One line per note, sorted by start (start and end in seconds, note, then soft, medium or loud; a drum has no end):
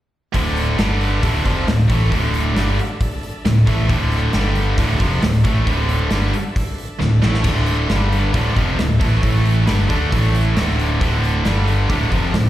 0.34 0.75 D1 medium
0.34 0.78 D2 loud
0.34 0.78 A2 loud
0.34 0.78 D3 loud
0.34 1.20 D4 medium
0.34 9.19 A4 medium
0.34 0.78 E5 medium
0.34 kick loud
0.34 open hi-hat medium
0.57 open hi-hat medium
0.78 1.20 G1 medium
0.78 1.22 G2 medium
0.78 1.23 D3 medium
0.78 1.22 G3 medium
0.78 1.23 G3 loud
0.78 snare loud
0.78 open hi-hat medium
1.01 open hi-hat medium
1.21 1.43 D1 medium
1.21 1.44 D2 medium
1.21 1.44 A2 loud
1.21 1.45 D3 medium
1.21 9.18 D4 medium
1.21 4.30 E5 medium
1.21 kick loud
1.21 open hi-hat medium
1.44 1.66 F1 medium
1.44 1.66 F2 medium
1.44 1.66 C3 medium
1.44 1.66 F3 medium
1.44 kick loud
1.44 open hi-hat medium
1.66 1.88 D1 medium
1.66 1.84 D2 medium
1.66 1.84 A2 medium
1.66 snare loud
1.66 open hi-hat medium
1.80 snare soft
1.88 2.10 A1 medium
1.88 2.10 A2 medium
1.88 2.10 E3 medium
1.88 2.10 A3 loud
1.88 kick loud
1.88 open hi-hat medium
2.10 2.54 D2 medium
2.10 2.54 A2 loud
2.10 2.53 D3 loud
2.10 kick loud
2.10 open hi-hat medium
2.34 open hi-hat medium
2.55 2.77 G1 loud
2.55 2.77 G2 medium
2.55 2.77 D3 loud
2.55 2.77 G3 loud
2.55 snare loud
2.55 open hi-hat medium
2.79 open hi-hat medium
3.01 kick loud
3.01 open hi-hat medium
3.23 open hi-hat medium
3.45 3.66 D1 medium
3.45 3.63 D2 medium
3.45 3.63 A2 medium
3.45 snare loud
3.45 open hi-hat medium
3.66 3.88 A1 loud
3.66 3.87 A2 medium
3.66 3.88 E3 medium
3.66 3.89 A3 loud
3.66 kick loud
3.66 open hi-hat medium
3.88 4.31 D1 loud
3.88 4.32 D2 loud
3.88 4.32 A2 loud
3.88 4.33 D3 loud
3.88 kick loud
3.88 open hi-hat medium
4.12 open hi-hat medium
4.32 4.75 G1 loud
4.32 4.77 G2 medium
4.32 4.77 D3 loud
4.32 4.77 G3 medium
4.32 4.78 G3 loud
4.32 snare loud
4.32 open hi-hat medium
4.55 open hi-hat medium
4.77 4.99 D1 loud
4.77 4.99 D2 medium
4.77 4.99 A2 medium
4.77 5.00 D3 loud
4.77 7.86 E5 medium
4.77 kick loud
4.77 open hi-hat medium
5.00 5.21 F1 loud
5.00 5.22 F2 medium
5.00 5.22 C3 medium
5.00 5.22 F3 medium
5.00 kick loud
5.00 open hi-hat medium
5.22 5.43 D1 medium
5.22 5.40 D2 medium
5.22 5.40 A2 medium
5.22 snare loud
5.22 open hi-hat medium
5.44 5.66 A1 loud
5.44 5.65 A2 medium
5.44 5.66 E3 medium
5.44 5.66 A3 loud
5.44 kick loud
5.44 open hi-hat medium
5.66 6.10 D2 loud
5.66 6.11 A2 loud
5.66 6.11 D3 loud
5.66 kick medium
5.66 open hi-hat medium
5.89 open hi-hat medium
6.10 6.32 G1 medium
6.10 6.33 G2 loud
6.10 6.33 D3 medium
6.10 6.34 G3 medium
6.10 snare loud
6.10 open hi-hat medium
6.33 open hi-hat medium
6.56 kick loud
6.56 open hi-hat medium
6.78 open hi-hat medium
7.00 7.21 D1 medium
7.00 7.18 D2 medium
7.00 7.18 A2 medium
7.00 snare medium
7.22 7.44 A1 loud
7.22 7.44 A2 medium
7.22 7.44 E3 medium
7.22 7.44 A3 medium
7.22 snare loud
7.34 snare medium
7.44 7.86 D1 loud
7.44 7.89 D2 medium
7.44 7.89 A2 loud
7.44 7.89 D3 loud
7.44 kick loud
7.44 open hi-hat medium
7.44 crash medium
7.66 open hi-hat medium
7.89 8.31 G1 medium
7.89 8.33 G2 medium
7.89 8.33 D3 medium
7.89 8.33 G3 medium
7.89 8.34 G3 loud
7.89 snare loud
7.89 open hi-hat medium
8.13 open hi-hat medium
8.33 8.54 D1 medium
8.33 8.55 D2 medium
8.33 8.55 A2 medium
8.33 8.56 D3 loud
8.33 9.22 E5 medium
8.33 kick loud
8.33 open hi-hat medium
8.56 8.77 F1 medium
8.56 8.78 F2 medium
8.56 8.78 C3 medium
8.56 8.78 F3 medium
8.56 kick loud
8.56 open hi-hat medium
8.79 8.99 D1 medium
8.79 8.96 D2 medium
8.79 8.96 A2 medium
8.79 snare loud
8.79 open hi-hat medium
8.99 9.21 A1 loud
8.99 9.21 A2 medium
8.99 9.22 E3 medium
8.99 9.21 A3 medium
8.99 kick loud
8.99 open hi-hat medium
9.22 9.64 A1 medium
9.22 9.66 A2 loud
9.22 9.66 E3 loud
9.22 9.66 A3 loud
9.22 9.67 A3 medium
9.22 9.67 E4 medium
9.22 12.50 A4 medium
9.22 kick loud
9.22 open hi-hat medium
9.45 open hi-hat medium
9.66 9.88 G1 loud
9.66 9.88 G2 medium
9.66 9.88 D3 medium
9.66 9.89 G3 loud
9.66 10.11 D4 medium
9.66 10.11 E5 medium
9.66 snare loud
9.66 open hi-hat medium
9.89 10.10 D2 medium
9.89 10.11 D3 medium
9.89 10.11 A3 medium
9.89 10.11 D4 loud
9.89 kick loud
9.89 open hi-hat medium
10.11 10.53 A1 medium
10.11 10.55 A2 medium
10.11 10.55 E3 loud
10.11 10.55 A3 medium
10.11 10.56 A3 loud
10.11 10.55 E4 medium
10.11 kick loud
10.11 open hi-hat medium
10.35 open hi-hat medium
10.55 10.97 D1 loud
10.55 11.00 D2 medium
10.55 11.00 A2 loud
10.55 11.00 D3 loud
10.55 12.50 D4 medium
10.55 11.43 E5 medium
10.55 snare loud
10.55 open hi-hat medium
10.79 open hi-hat medium
11.01 11.42 D1 loud
11.01 11.44 D2 loud
11.01 11.45 A2 loud
11.01 11.44 D3 loud
11.01 kick loud
11.01 open hi-hat medium
11.24 open hi-hat medium
11.44 11.86 G1 medium
11.44 11.88 G2 medium
11.44 11.89 D3 loud
11.44 11.88 G3 medium
11.44 11.89 G3 loud
11.44 snare medium
11.44 open hi-hat medium
11.68 open hi-hat medium
11.89 12.10 D1 loud
11.89 12.11 D2 medium
11.89 12.11 A2 medium
11.89 12.12 D3 loud
11.89 12.50 E5 medium
11.89 kick loud
11.89 open hi-hat medium
12.11 12.32 F1 medium
12.11 12.33 F2 medium
12.11 12.33 C3 medium
12.11 12.33 F3 medium
12.11 kick loud
12.11 open hi-hat medium
12.34 12.50 D1 medium
12.34 12.50 D2 medium
12.34 12.50 A2 medium
12.34 snare loud
12.34 open hi-hat medium
12.46 snare soft